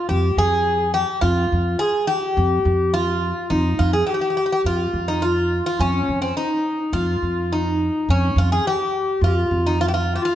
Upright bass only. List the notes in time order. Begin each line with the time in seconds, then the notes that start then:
0.09 F2
0.37 F2
1.22 F2
1.52 F2
2.37 F2
2.65 F2
3.50 F2
3.79 F2
4.65 F2
4.93 F2
5.79 F2
6.08 F2
6.93 F2
7.22 F2
8.09 F2
8.36 F2
9.21 F2
9.51 F2